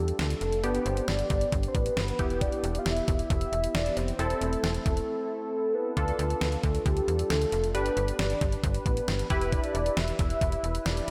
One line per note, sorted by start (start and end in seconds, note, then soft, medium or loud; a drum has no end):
0.00 0.12 E2 medium
0.00 0.60 D4 medium
0.00 0.60 F4 medium
0.00 0.18 G4 medium
0.00 0.60 A4 medium
0.08 closed hi-hat medium
0.19 0.35 D2 loud
0.19 0.65 A4 loud
0.19 snare loud
0.19 closed hi-hat medium
0.30 closed hi-hat medium
0.41 0.65 F1 medium
0.41 closed hi-hat medium
0.53 closed hi-hat soft
0.63 0.79 G1 loud
0.63 2.16 B3 medium
0.63 2.16 D4 medium
0.63 2.16 G4 medium
0.63 0.87 B4 loud
0.63 closed hi-hat medium
0.75 closed hi-hat soft
0.86 1.01 G1 loud
0.86 1.10 C5 loud
0.86 closed hi-hat medium
0.97 closed hi-hat soft
1.08 1.24 G1 loud
1.08 1.52 D5 loud
1.08 snare loud
1.08 closed hi-hat medium
1.19 closed hi-hat soft
1.30 1.46 G1 loud
1.30 kick medium
1.30 closed hi-hat medium
1.41 closed hi-hat medium
1.52 1.68 G1 loud
1.52 kick medium
1.52 closed hi-hat medium
1.63 closed hi-hat soft
1.68 1.76 C5 medium
1.75 1.90 A1 medium
1.75 2.43 B4 loud
1.75 kick medium
1.75 closed hi-hat medium
1.86 closed hi-hat medium
1.97 2.12 G1 loud
1.97 snare loud
1.97 closed hi-hat medium
2.08 closed hi-hat soft
2.19 2.50 E1 medium
2.19 4.15 B3 medium
2.19 4.15 E4 medium
2.19 4.15 G4 medium
2.19 kick medium
2.19 closed hi-hat medium
2.30 closed hi-hat soft
2.41 2.80 D5 loud
2.41 kick loud
2.41 closed hi-hat medium
2.52 closed hi-hat medium
2.64 2.79 E1 medium
2.64 closed hi-hat medium
2.75 2.87 F5 medium
2.75 closed hi-hat medium
2.86 3.01 E1 medium
2.86 3.30 E5 loud
2.86 snare loud
2.86 closed hi-hat medium
2.97 closed hi-hat soft
3.08 3.24 E1 loud
3.08 kick medium
3.08 closed hi-hat medium
3.19 closed hi-hat medium
3.30 3.46 E1 loud
3.30 3.76 E5 loud
3.30 kick medium
3.30 closed hi-hat medium
3.41 closed hi-hat soft
3.52 3.68 E1 medium
3.52 closed hi-hat medium
3.64 closed hi-hat medium
3.75 3.90 E1 loud
3.75 3.98 D5 loud
3.75 snare loud
3.75 closed hi-hat medium
3.86 closed hi-hat soft
3.97 4.12 F1 medium
3.97 4.43 C5 loud
3.97 closed hi-hat medium
4.08 closed hi-hat soft
4.19 4.35 E1 loud
4.19 5.93 C4 medium
4.19 5.93 E4 medium
4.19 5.93 A4 medium
4.19 closed hi-hat medium
4.30 closed hi-hat medium
4.41 4.57 E1 loud
4.41 5.76 A4 loud
4.41 closed hi-hat medium
4.53 closed hi-hat medium
4.64 4.79 E1 loud
4.64 snare loud
4.64 closed hi-hat medium
4.74 closed hi-hat soft
4.86 5.01 E1 loud
4.86 kick medium
4.86 closed hi-hat medium
4.97 closed hi-hat medium
5.75 6.65 B4 loud
5.97 6.12 D2 loud
5.97 7.71 D4 medium
5.97 7.71 F4 medium
5.97 7.71 A4 medium
5.97 kick medium
5.97 closed hi-hat medium
6.08 closed hi-hat medium
6.19 6.35 D2 loud
6.19 closed hi-hat medium
6.30 closed hi-hat soft
6.41 6.57 D2 medium
6.41 snare loud
6.41 closed hi-hat medium
6.52 closed hi-hat soft
6.63 6.79 D2 loud
6.63 6.85 A4 medium
6.63 kick medium
6.63 closed hi-hat medium
6.75 closed hi-hat medium
6.86 7.01 D2 loud
6.86 7.32 G4 medium
6.86 kick medium
6.86 closed hi-hat medium
6.97 closed hi-hat soft
7.08 7.24 E2 medium
7.08 closed hi-hat medium
7.19 closed hi-hat medium
7.30 7.46 D2 loud
7.30 7.76 A4 medium
7.30 snare loud
7.30 closed hi-hat medium
7.42 closed hi-hat medium
7.52 7.76 F1 medium
7.52 closed hi-hat medium
7.64 closed hi-hat soft
7.75 7.90 G1 loud
7.75 9.27 D4 medium
7.75 9.27 G4 medium
7.75 9.27 B4 medium
7.75 8.21 B4 loud
7.75 closed hi-hat medium
7.86 closed hi-hat medium
7.97 8.12 G1 medium
7.97 closed hi-hat medium
8.08 closed hi-hat medium
8.19 8.35 G1 loud
8.19 8.64 D5 medium
8.19 snare loud
8.19 closed hi-hat medium
8.30 closed hi-hat soft
8.41 8.57 G1 loud
8.41 kick medium
8.41 closed hi-hat medium
8.52 closed hi-hat medium
8.64 8.79 G1 loud
8.64 kick medium
8.64 closed hi-hat medium
8.74 closed hi-hat soft
8.86 9.01 A1 medium
8.86 9.54 B4 loud
8.86 kick medium
8.86 closed hi-hat medium
8.97 closed hi-hat medium
9.08 9.24 G1 loud
9.08 snare loud
9.08 closed hi-hat medium
9.19 closed hi-hat medium
9.30 9.61 E1 medium
9.30 11.11 E4 medium
9.30 11.11 G4 medium
9.30 11.11 B4 medium
9.30 kick medium
9.30 closed hi-hat medium
9.41 closed hi-hat medium
9.52 9.98 D5 loud
9.52 kick loud
9.52 closed hi-hat medium
9.64 closed hi-hat medium
9.75 9.90 E1 medium
9.75 closed hi-hat medium
9.86 closed hi-hat medium
9.97 10.12 E1 loud
9.97 10.19 E5 loud
9.97 snare loud
9.97 closed hi-hat medium
10.08 closed hi-hat soft
10.19 10.35 E1 loud
10.19 10.87 E5 loud
10.19 kick medium
10.19 closed hi-hat medium
10.30 closed hi-hat medium
10.41 10.57 E1 loud
10.41 kick medium
10.41 closed hi-hat medium
10.52 closed hi-hat soft
10.64 10.79 E1 medium
10.64 closed hi-hat medium
10.75 closed hi-hat medium
10.86 11.01 E1 loud
10.86 11.11 D5 loud
10.86 snare loud
10.86 closed hi-hat medium
10.97 closed hi-hat medium